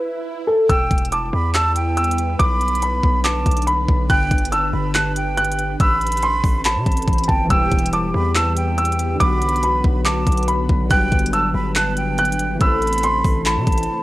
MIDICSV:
0, 0, Header, 1, 8, 480
1, 0, Start_track
1, 0, Key_signature, 1, "minor"
1, 0, Tempo, 425532
1, 782, Time_signature, 4, 2, 24, 8
1, 15825, End_track
2, 0, Start_track
2, 0, Title_t, "Grand piano"
2, 0, Program_c, 0, 0
2, 0, Note_on_c, 0, 71, 84
2, 500, Note_off_c, 0, 71, 0
2, 532, Note_on_c, 0, 69, 82
2, 749, Note_off_c, 0, 69, 0
2, 782, Note_on_c, 0, 88, 105
2, 1233, Note_off_c, 0, 88, 0
2, 1266, Note_on_c, 0, 86, 81
2, 1715, Note_off_c, 0, 86, 0
2, 1743, Note_on_c, 0, 88, 87
2, 2194, Note_off_c, 0, 88, 0
2, 2222, Note_on_c, 0, 88, 84
2, 2673, Note_off_c, 0, 88, 0
2, 2698, Note_on_c, 0, 86, 111
2, 3151, Note_off_c, 0, 86, 0
2, 3187, Note_on_c, 0, 83, 84
2, 3636, Note_off_c, 0, 83, 0
2, 3658, Note_on_c, 0, 86, 85
2, 4111, Note_off_c, 0, 86, 0
2, 4139, Note_on_c, 0, 83, 87
2, 4592, Note_off_c, 0, 83, 0
2, 4622, Note_on_c, 0, 90, 100
2, 5073, Note_off_c, 0, 90, 0
2, 5101, Note_on_c, 0, 88, 87
2, 5552, Note_off_c, 0, 88, 0
2, 5583, Note_on_c, 0, 90, 85
2, 6034, Note_off_c, 0, 90, 0
2, 6063, Note_on_c, 0, 90, 95
2, 6514, Note_off_c, 0, 90, 0
2, 6548, Note_on_c, 0, 88, 92
2, 6996, Note_off_c, 0, 88, 0
2, 7028, Note_on_c, 0, 84, 81
2, 7476, Note_off_c, 0, 84, 0
2, 7506, Note_on_c, 0, 83, 86
2, 8181, Note_off_c, 0, 83, 0
2, 8211, Note_on_c, 0, 81, 84
2, 8429, Note_off_c, 0, 81, 0
2, 8463, Note_on_c, 0, 88, 104
2, 8914, Note_off_c, 0, 88, 0
2, 8947, Note_on_c, 0, 86, 79
2, 9396, Note_off_c, 0, 86, 0
2, 9423, Note_on_c, 0, 88, 93
2, 9874, Note_off_c, 0, 88, 0
2, 9903, Note_on_c, 0, 88, 84
2, 10354, Note_off_c, 0, 88, 0
2, 10379, Note_on_c, 0, 86, 114
2, 10832, Note_off_c, 0, 86, 0
2, 10869, Note_on_c, 0, 83, 85
2, 11317, Note_off_c, 0, 83, 0
2, 11338, Note_on_c, 0, 86, 85
2, 11791, Note_off_c, 0, 86, 0
2, 11819, Note_on_c, 0, 83, 86
2, 12271, Note_off_c, 0, 83, 0
2, 12302, Note_on_c, 0, 90, 102
2, 12753, Note_off_c, 0, 90, 0
2, 12781, Note_on_c, 0, 88, 89
2, 13233, Note_off_c, 0, 88, 0
2, 13264, Note_on_c, 0, 90, 84
2, 13714, Note_off_c, 0, 90, 0
2, 13746, Note_on_c, 0, 90, 94
2, 14195, Note_off_c, 0, 90, 0
2, 14226, Note_on_c, 0, 88, 92
2, 14675, Note_off_c, 0, 88, 0
2, 14705, Note_on_c, 0, 84, 80
2, 15155, Note_off_c, 0, 84, 0
2, 15183, Note_on_c, 0, 83, 87
2, 15825, Note_off_c, 0, 83, 0
2, 15825, End_track
3, 0, Start_track
3, 0, Title_t, "Flute"
3, 0, Program_c, 1, 73
3, 781, Note_on_c, 1, 79, 110
3, 1232, Note_off_c, 1, 79, 0
3, 1261, Note_on_c, 1, 81, 77
3, 1490, Note_off_c, 1, 81, 0
3, 1506, Note_on_c, 1, 83, 81
3, 1732, Note_off_c, 1, 83, 0
3, 1743, Note_on_c, 1, 81, 99
3, 1971, Note_off_c, 1, 81, 0
3, 1984, Note_on_c, 1, 79, 92
3, 2660, Note_off_c, 1, 79, 0
3, 2699, Note_on_c, 1, 83, 116
3, 3615, Note_off_c, 1, 83, 0
3, 3663, Note_on_c, 1, 81, 92
3, 4114, Note_off_c, 1, 81, 0
3, 4624, Note_on_c, 1, 79, 124
3, 5074, Note_off_c, 1, 79, 0
3, 5103, Note_on_c, 1, 81, 89
3, 5331, Note_off_c, 1, 81, 0
3, 5338, Note_on_c, 1, 83, 83
3, 5568, Note_off_c, 1, 83, 0
3, 5585, Note_on_c, 1, 81, 90
3, 5811, Note_off_c, 1, 81, 0
3, 5824, Note_on_c, 1, 79, 92
3, 6500, Note_off_c, 1, 79, 0
3, 6543, Note_on_c, 1, 83, 118
3, 7457, Note_off_c, 1, 83, 0
3, 7501, Note_on_c, 1, 81, 90
3, 8178, Note_off_c, 1, 81, 0
3, 8219, Note_on_c, 1, 79, 89
3, 8448, Note_off_c, 1, 79, 0
3, 8462, Note_on_c, 1, 79, 119
3, 8913, Note_off_c, 1, 79, 0
3, 8943, Note_on_c, 1, 81, 79
3, 9170, Note_off_c, 1, 81, 0
3, 9187, Note_on_c, 1, 83, 86
3, 9413, Note_off_c, 1, 83, 0
3, 9422, Note_on_c, 1, 81, 101
3, 9650, Note_off_c, 1, 81, 0
3, 9663, Note_on_c, 1, 79, 90
3, 10339, Note_off_c, 1, 79, 0
3, 10380, Note_on_c, 1, 83, 114
3, 11296, Note_off_c, 1, 83, 0
3, 11345, Note_on_c, 1, 81, 88
3, 11795, Note_off_c, 1, 81, 0
3, 12303, Note_on_c, 1, 79, 127
3, 12754, Note_off_c, 1, 79, 0
3, 12783, Note_on_c, 1, 81, 89
3, 13010, Note_off_c, 1, 81, 0
3, 13018, Note_on_c, 1, 83, 88
3, 13248, Note_off_c, 1, 83, 0
3, 13265, Note_on_c, 1, 81, 92
3, 13491, Note_off_c, 1, 81, 0
3, 13504, Note_on_c, 1, 79, 92
3, 14180, Note_off_c, 1, 79, 0
3, 14222, Note_on_c, 1, 83, 121
3, 15137, Note_off_c, 1, 83, 0
3, 15180, Note_on_c, 1, 81, 91
3, 15825, Note_off_c, 1, 81, 0
3, 15825, End_track
4, 0, Start_track
4, 0, Title_t, "Ambient pad"
4, 0, Program_c, 2, 92
4, 783, Note_on_c, 2, 59, 74
4, 784, Note_on_c, 2, 71, 88
4, 785, Note_on_c, 2, 55, 84
4, 786, Note_on_c, 2, 64, 78
4, 2684, Note_off_c, 2, 55, 0
4, 2685, Note_off_c, 2, 64, 0
4, 2702, Note_on_c, 2, 50, 83
4, 2702, Note_on_c, 2, 62, 77
4, 4584, Note_off_c, 2, 59, 0
4, 4584, Note_off_c, 2, 71, 0
4, 4623, Note_on_c, 2, 71, 92
4, 4624, Note_on_c, 2, 67, 77
4, 6503, Note_off_c, 2, 50, 0
4, 6503, Note_off_c, 2, 62, 0
4, 6523, Note_off_c, 2, 71, 0
4, 6524, Note_off_c, 2, 67, 0
4, 6541, Note_on_c, 2, 52, 80
4, 6541, Note_on_c, 2, 60, 74
4, 6541, Note_on_c, 2, 69, 77
4, 6543, Note_on_c, 2, 72, 90
4, 8443, Note_off_c, 2, 60, 0
4, 8443, Note_off_c, 2, 69, 0
4, 8443, Note_off_c, 2, 72, 0
4, 8464, Note_on_c, 2, 67, 74
4, 8465, Note_on_c, 2, 59, 73
4, 8465, Note_on_c, 2, 71, 91
4, 10343, Note_off_c, 2, 52, 0
4, 10364, Note_off_c, 2, 67, 0
4, 10364, Note_off_c, 2, 71, 0
4, 10384, Note_on_c, 2, 50, 82
4, 10384, Note_on_c, 2, 66, 78
4, 10384, Note_on_c, 2, 71, 95
4, 12265, Note_off_c, 2, 59, 0
4, 12284, Note_off_c, 2, 66, 0
4, 12284, Note_off_c, 2, 71, 0
4, 12301, Note_on_c, 2, 59, 73
4, 12302, Note_on_c, 2, 62, 77
4, 12303, Note_on_c, 2, 71, 88
4, 14185, Note_off_c, 2, 50, 0
4, 14203, Note_off_c, 2, 59, 0
4, 14203, Note_off_c, 2, 62, 0
4, 14203, Note_off_c, 2, 71, 0
4, 14222, Note_on_c, 2, 48, 84
4, 14222, Note_on_c, 2, 57, 75
4, 14222, Note_on_c, 2, 64, 75
4, 14222, Note_on_c, 2, 72, 95
4, 15825, Note_off_c, 2, 48, 0
4, 15825, Note_off_c, 2, 57, 0
4, 15825, Note_off_c, 2, 64, 0
4, 15825, Note_off_c, 2, 72, 0
4, 15825, End_track
5, 0, Start_track
5, 0, Title_t, "Synth keys"
5, 0, Program_c, 3, 88
5, 8396, Note_on_c, 3, 52, 74
5, 8439, Note_on_c, 3, 55, 62
5, 8483, Note_on_c, 3, 59, 64
5, 8527, Note_on_c, 3, 67, 75
5, 8706, Control_c, 3, 64, 127
5, 10310, Note_off_c, 3, 52, 0
5, 10314, Note_on_c, 3, 50, 68
5, 10332, Note_off_c, 3, 55, 0
5, 10354, Note_off_c, 3, 59, 0
5, 10358, Note_on_c, 3, 54, 64
5, 10377, Note_off_c, 3, 67, 0
5, 10396, Control_c, 3, 64, 0
5, 10401, Note_on_c, 3, 59, 62
5, 10445, Note_on_c, 3, 66, 73
5, 10612, Control_c, 3, 64, 127
5, 12222, Note_off_c, 3, 50, 0
5, 12235, Note_on_c, 3, 50, 70
5, 12251, Note_off_c, 3, 54, 0
5, 12273, Note_off_c, 3, 59, 0
5, 12279, Note_on_c, 3, 55, 64
5, 12296, Note_off_c, 3, 66, 0
5, 12318, Control_c, 3, 64, 0
5, 12322, Note_on_c, 3, 59, 63
5, 12366, Note_on_c, 3, 54, 73
5, 12512, Control_c, 3, 64, 127
5, 14150, Note_off_c, 3, 50, 0
5, 14157, Note_on_c, 3, 52, 67
5, 14172, Note_off_c, 3, 55, 0
5, 14194, Note_off_c, 3, 59, 0
5, 14200, Note_on_c, 3, 57, 63
5, 14216, Note_off_c, 3, 54, 0
5, 14237, Control_c, 3, 64, 0
5, 14244, Note_on_c, 3, 60, 61
5, 14287, Note_on_c, 3, 69, 74
5, 14431, Control_c, 3, 64, 127
5, 15825, Note_off_c, 3, 52, 0
5, 15825, Note_off_c, 3, 57, 0
5, 15825, Note_off_c, 3, 60, 0
5, 15825, Note_off_c, 3, 69, 0
5, 15825, End_track
6, 0, Start_track
6, 0, Title_t, "808-style bass"
6, 0, Program_c, 4, 38
6, 782, Note_on_c, 4, 28, 112
6, 1012, Note_off_c, 4, 28, 0
6, 1023, Note_on_c, 4, 28, 103
6, 1483, Note_off_c, 4, 28, 0
6, 1501, Note_on_c, 4, 40, 104
6, 2657, Note_off_c, 4, 40, 0
6, 2702, Note_on_c, 4, 35, 118
6, 3393, Note_off_c, 4, 35, 0
6, 3422, Note_on_c, 4, 35, 103
6, 3883, Note_off_c, 4, 35, 0
6, 3902, Note_on_c, 4, 35, 110
6, 4363, Note_off_c, 4, 35, 0
6, 4382, Note_on_c, 4, 35, 109
6, 4612, Note_off_c, 4, 35, 0
6, 4622, Note_on_c, 4, 31, 115
6, 4852, Note_off_c, 4, 31, 0
6, 4863, Note_on_c, 4, 31, 102
6, 5323, Note_off_c, 4, 31, 0
6, 5340, Note_on_c, 4, 31, 102
6, 6496, Note_off_c, 4, 31, 0
6, 6542, Note_on_c, 4, 33, 118
6, 7233, Note_off_c, 4, 33, 0
6, 7262, Note_on_c, 4, 33, 107
6, 7623, Note_on_c, 4, 48, 100
6, 7640, Note_off_c, 4, 33, 0
6, 7736, Note_off_c, 4, 48, 0
6, 7742, Note_on_c, 4, 33, 110
6, 7972, Note_off_c, 4, 33, 0
6, 7982, Note_on_c, 4, 33, 108
6, 8212, Note_off_c, 4, 33, 0
6, 8222, Note_on_c, 4, 31, 107
6, 8452, Note_off_c, 4, 31, 0
6, 8463, Note_on_c, 4, 28, 115
6, 8693, Note_off_c, 4, 28, 0
6, 8703, Note_on_c, 4, 28, 107
6, 9163, Note_off_c, 4, 28, 0
6, 9184, Note_on_c, 4, 40, 100
6, 10338, Note_off_c, 4, 40, 0
6, 10382, Note_on_c, 4, 35, 116
6, 11073, Note_off_c, 4, 35, 0
6, 11102, Note_on_c, 4, 35, 104
6, 11563, Note_off_c, 4, 35, 0
6, 11581, Note_on_c, 4, 35, 110
6, 12042, Note_off_c, 4, 35, 0
6, 12061, Note_on_c, 4, 35, 106
6, 12292, Note_off_c, 4, 35, 0
6, 12301, Note_on_c, 4, 31, 113
6, 12532, Note_off_c, 4, 31, 0
6, 12542, Note_on_c, 4, 31, 105
6, 13003, Note_off_c, 4, 31, 0
6, 13019, Note_on_c, 4, 31, 102
6, 14175, Note_off_c, 4, 31, 0
6, 14222, Note_on_c, 4, 33, 112
6, 14913, Note_off_c, 4, 33, 0
6, 14941, Note_on_c, 4, 33, 104
6, 15301, Note_on_c, 4, 48, 103
6, 15318, Note_off_c, 4, 33, 0
6, 15413, Note_off_c, 4, 48, 0
6, 15420, Note_on_c, 4, 33, 111
6, 15651, Note_off_c, 4, 33, 0
6, 15825, End_track
7, 0, Start_track
7, 0, Title_t, "Swell"
7, 0, Program_c, 5, 103
7, 0, Note_on_c, 5, 60, 83
7, 782, Note_off_c, 5, 60, 0
7, 15825, End_track
8, 0, Start_track
8, 0, Title_t, "Drums"
8, 782, Note_on_c, 9, 36, 126
8, 782, Note_on_c, 9, 42, 73
8, 895, Note_off_c, 9, 36, 0
8, 895, Note_off_c, 9, 42, 0
8, 1023, Note_on_c, 9, 36, 102
8, 1023, Note_on_c, 9, 42, 50
8, 1103, Note_off_c, 9, 42, 0
8, 1103, Note_on_c, 9, 42, 66
8, 1136, Note_off_c, 9, 36, 0
8, 1183, Note_off_c, 9, 42, 0
8, 1183, Note_on_c, 9, 42, 88
8, 1263, Note_off_c, 9, 42, 0
8, 1263, Note_on_c, 9, 42, 76
8, 1376, Note_off_c, 9, 42, 0
8, 1743, Note_on_c, 9, 39, 107
8, 1743, Note_on_c, 9, 42, 79
8, 1856, Note_off_c, 9, 39, 0
8, 1856, Note_off_c, 9, 42, 0
8, 1982, Note_on_c, 9, 42, 81
8, 2095, Note_off_c, 9, 42, 0
8, 2222, Note_on_c, 9, 42, 59
8, 2302, Note_off_c, 9, 42, 0
8, 2302, Note_on_c, 9, 42, 59
8, 2382, Note_off_c, 9, 42, 0
8, 2382, Note_on_c, 9, 42, 61
8, 2462, Note_off_c, 9, 42, 0
8, 2462, Note_on_c, 9, 42, 73
8, 2574, Note_off_c, 9, 42, 0
8, 2702, Note_on_c, 9, 36, 127
8, 2702, Note_on_c, 9, 42, 74
8, 2814, Note_off_c, 9, 42, 0
8, 2815, Note_off_c, 9, 36, 0
8, 2942, Note_on_c, 9, 42, 70
8, 3023, Note_off_c, 9, 42, 0
8, 3023, Note_on_c, 9, 42, 67
8, 3103, Note_off_c, 9, 42, 0
8, 3103, Note_on_c, 9, 42, 69
8, 3182, Note_off_c, 9, 42, 0
8, 3182, Note_on_c, 9, 42, 78
8, 3295, Note_off_c, 9, 42, 0
8, 3422, Note_on_c, 9, 36, 99
8, 3535, Note_off_c, 9, 36, 0
8, 3662, Note_on_c, 9, 39, 110
8, 3662, Note_on_c, 9, 42, 78
8, 3775, Note_off_c, 9, 39, 0
8, 3775, Note_off_c, 9, 42, 0
8, 3901, Note_on_c, 9, 36, 95
8, 3902, Note_on_c, 9, 42, 62
8, 3963, Note_off_c, 9, 42, 0
8, 3963, Note_on_c, 9, 42, 64
8, 4014, Note_off_c, 9, 36, 0
8, 4023, Note_off_c, 9, 42, 0
8, 4023, Note_on_c, 9, 42, 67
8, 4083, Note_off_c, 9, 42, 0
8, 4083, Note_on_c, 9, 42, 65
8, 4143, Note_off_c, 9, 42, 0
8, 4143, Note_on_c, 9, 42, 72
8, 4256, Note_off_c, 9, 42, 0
8, 4382, Note_on_c, 9, 36, 101
8, 4495, Note_off_c, 9, 36, 0
8, 4623, Note_on_c, 9, 36, 125
8, 4623, Note_on_c, 9, 42, 73
8, 4735, Note_off_c, 9, 36, 0
8, 4735, Note_off_c, 9, 42, 0
8, 4863, Note_on_c, 9, 36, 106
8, 4863, Note_on_c, 9, 42, 50
8, 4943, Note_off_c, 9, 42, 0
8, 4943, Note_on_c, 9, 42, 69
8, 4976, Note_off_c, 9, 36, 0
8, 5022, Note_off_c, 9, 42, 0
8, 5022, Note_on_c, 9, 42, 86
8, 5103, Note_off_c, 9, 42, 0
8, 5103, Note_on_c, 9, 42, 75
8, 5215, Note_off_c, 9, 42, 0
8, 5582, Note_on_c, 9, 39, 107
8, 5582, Note_on_c, 9, 42, 80
8, 5695, Note_off_c, 9, 39, 0
8, 5695, Note_off_c, 9, 42, 0
8, 5822, Note_on_c, 9, 42, 81
8, 5935, Note_off_c, 9, 42, 0
8, 6063, Note_on_c, 9, 42, 62
8, 6143, Note_off_c, 9, 42, 0
8, 6143, Note_on_c, 9, 42, 62
8, 6222, Note_off_c, 9, 42, 0
8, 6222, Note_on_c, 9, 42, 60
8, 6302, Note_off_c, 9, 42, 0
8, 6302, Note_on_c, 9, 42, 72
8, 6415, Note_off_c, 9, 42, 0
8, 6542, Note_on_c, 9, 36, 127
8, 6542, Note_on_c, 9, 42, 75
8, 6655, Note_off_c, 9, 36, 0
8, 6655, Note_off_c, 9, 42, 0
8, 6782, Note_on_c, 9, 42, 53
8, 6842, Note_off_c, 9, 42, 0
8, 6842, Note_on_c, 9, 42, 62
8, 6902, Note_off_c, 9, 42, 0
8, 6902, Note_on_c, 9, 42, 73
8, 6962, Note_off_c, 9, 42, 0
8, 6962, Note_on_c, 9, 42, 86
8, 7022, Note_off_c, 9, 42, 0
8, 7022, Note_on_c, 9, 42, 74
8, 7135, Note_off_c, 9, 42, 0
8, 7262, Note_on_c, 9, 36, 101
8, 7262, Note_on_c, 9, 46, 61
8, 7375, Note_off_c, 9, 36, 0
8, 7375, Note_off_c, 9, 46, 0
8, 7502, Note_on_c, 9, 39, 110
8, 7503, Note_on_c, 9, 42, 80
8, 7615, Note_off_c, 9, 39, 0
8, 7615, Note_off_c, 9, 42, 0
8, 7742, Note_on_c, 9, 36, 94
8, 7742, Note_on_c, 9, 42, 46
8, 7803, Note_off_c, 9, 42, 0
8, 7803, Note_on_c, 9, 42, 56
8, 7854, Note_off_c, 9, 36, 0
8, 7862, Note_off_c, 9, 42, 0
8, 7862, Note_on_c, 9, 42, 68
8, 7922, Note_off_c, 9, 42, 0
8, 7922, Note_on_c, 9, 42, 78
8, 7982, Note_off_c, 9, 42, 0
8, 7982, Note_on_c, 9, 36, 98
8, 7982, Note_on_c, 9, 42, 44
8, 8042, Note_off_c, 9, 42, 0
8, 8042, Note_on_c, 9, 42, 54
8, 8095, Note_off_c, 9, 36, 0
8, 8102, Note_off_c, 9, 42, 0
8, 8102, Note_on_c, 9, 42, 62
8, 8162, Note_off_c, 9, 42, 0
8, 8162, Note_on_c, 9, 42, 75
8, 8222, Note_on_c, 9, 36, 99
8, 8275, Note_off_c, 9, 42, 0
8, 8334, Note_off_c, 9, 36, 0
8, 8462, Note_on_c, 9, 36, 127
8, 8462, Note_on_c, 9, 42, 73
8, 8574, Note_off_c, 9, 42, 0
8, 8575, Note_off_c, 9, 36, 0
8, 8702, Note_on_c, 9, 42, 53
8, 8703, Note_on_c, 9, 36, 104
8, 8782, Note_off_c, 9, 42, 0
8, 8782, Note_on_c, 9, 42, 66
8, 8816, Note_off_c, 9, 36, 0
8, 8863, Note_off_c, 9, 42, 0
8, 8863, Note_on_c, 9, 42, 91
8, 8943, Note_off_c, 9, 42, 0
8, 8943, Note_on_c, 9, 42, 76
8, 9055, Note_off_c, 9, 42, 0
8, 9423, Note_on_c, 9, 39, 106
8, 9423, Note_on_c, 9, 42, 78
8, 9535, Note_off_c, 9, 39, 0
8, 9536, Note_off_c, 9, 42, 0
8, 9663, Note_on_c, 9, 42, 78
8, 9775, Note_off_c, 9, 42, 0
8, 9903, Note_on_c, 9, 42, 61
8, 9984, Note_off_c, 9, 42, 0
8, 9984, Note_on_c, 9, 42, 62
8, 10063, Note_off_c, 9, 42, 0
8, 10063, Note_on_c, 9, 42, 60
8, 10143, Note_off_c, 9, 42, 0
8, 10143, Note_on_c, 9, 42, 73
8, 10255, Note_off_c, 9, 42, 0
8, 10382, Note_on_c, 9, 36, 126
8, 10382, Note_on_c, 9, 42, 77
8, 10495, Note_off_c, 9, 36, 0
8, 10495, Note_off_c, 9, 42, 0
8, 10622, Note_on_c, 9, 42, 71
8, 10702, Note_off_c, 9, 42, 0
8, 10702, Note_on_c, 9, 42, 69
8, 10782, Note_off_c, 9, 42, 0
8, 10782, Note_on_c, 9, 42, 74
8, 10862, Note_off_c, 9, 42, 0
8, 10862, Note_on_c, 9, 42, 79
8, 10975, Note_off_c, 9, 42, 0
8, 11102, Note_on_c, 9, 36, 103
8, 11215, Note_off_c, 9, 36, 0
8, 11341, Note_on_c, 9, 39, 106
8, 11341, Note_on_c, 9, 42, 76
8, 11453, Note_off_c, 9, 39, 0
8, 11454, Note_off_c, 9, 42, 0
8, 11580, Note_on_c, 9, 36, 94
8, 11581, Note_on_c, 9, 42, 62
8, 11641, Note_off_c, 9, 42, 0
8, 11641, Note_on_c, 9, 42, 63
8, 11693, Note_off_c, 9, 36, 0
8, 11702, Note_off_c, 9, 42, 0
8, 11702, Note_on_c, 9, 42, 64
8, 11761, Note_off_c, 9, 42, 0
8, 11761, Note_on_c, 9, 42, 67
8, 11821, Note_off_c, 9, 42, 0
8, 11821, Note_on_c, 9, 42, 74
8, 11934, Note_off_c, 9, 42, 0
8, 12061, Note_on_c, 9, 36, 99
8, 12174, Note_off_c, 9, 36, 0
8, 12301, Note_on_c, 9, 36, 127
8, 12301, Note_on_c, 9, 42, 74
8, 12414, Note_off_c, 9, 36, 0
8, 12414, Note_off_c, 9, 42, 0
8, 12541, Note_on_c, 9, 42, 51
8, 12542, Note_on_c, 9, 36, 104
8, 12621, Note_off_c, 9, 42, 0
8, 12621, Note_on_c, 9, 42, 68
8, 12654, Note_off_c, 9, 36, 0
8, 12700, Note_off_c, 9, 42, 0
8, 12700, Note_on_c, 9, 42, 90
8, 12781, Note_off_c, 9, 42, 0
8, 12781, Note_on_c, 9, 42, 76
8, 12894, Note_off_c, 9, 42, 0
8, 13260, Note_on_c, 9, 39, 112
8, 13261, Note_on_c, 9, 42, 78
8, 13373, Note_off_c, 9, 39, 0
8, 13373, Note_off_c, 9, 42, 0
8, 13500, Note_on_c, 9, 42, 77
8, 13613, Note_off_c, 9, 42, 0
8, 13740, Note_on_c, 9, 42, 60
8, 13820, Note_off_c, 9, 42, 0
8, 13820, Note_on_c, 9, 42, 60
8, 13900, Note_off_c, 9, 42, 0
8, 13900, Note_on_c, 9, 42, 60
8, 13980, Note_off_c, 9, 42, 0
8, 13980, Note_on_c, 9, 42, 74
8, 14093, Note_off_c, 9, 42, 0
8, 14221, Note_on_c, 9, 36, 125
8, 14221, Note_on_c, 9, 42, 75
8, 14333, Note_off_c, 9, 42, 0
8, 14334, Note_off_c, 9, 36, 0
8, 14461, Note_on_c, 9, 42, 49
8, 14521, Note_off_c, 9, 42, 0
8, 14521, Note_on_c, 9, 42, 62
8, 14581, Note_off_c, 9, 42, 0
8, 14581, Note_on_c, 9, 42, 74
8, 14641, Note_off_c, 9, 42, 0
8, 14641, Note_on_c, 9, 42, 88
8, 14701, Note_off_c, 9, 42, 0
8, 14701, Note_on_c, 9, 42, 77
8, 14814, Note_off_c, 9, 42, 0
8, 14941, Note_on_c, 9, 36, 102
8, 14941, Note_on_c, 9, 46, 64
8, 15054, Note_off_c, 9, 36, 0
8, 15054, Note_off_c, 9, 46, 0
8, 15181, Note_on_c, 9, 39, 112
8, 15181, Note_on_c, 9, 42, 77
8, 15293, Note_off_c, 9, 39, 0
8, 15294, Note_off_c, 9, 42, 0
8, 15420, Note_on_c, 9, 36, 95
8, 15421, Note_on_c, 9, 42, 46
8, 15481, Note_off_c, 9, 42, 0
8, 15481, Note_on_c, 9, 42, 55
8, 15533, Note_off_c, 9, 36, 0
8, 15541, Note_off_c, 9, 42, 0
8, 15541, Note_on_c, 9, 42, 69
8, 15601, Note_off_c, 9, 42, 0
8, 15601, Note_on_c, 9, 42, 80
8, 15714, Note_off_c, 9, 42, 0
8, 15825, End_track
0, 0, End_of_file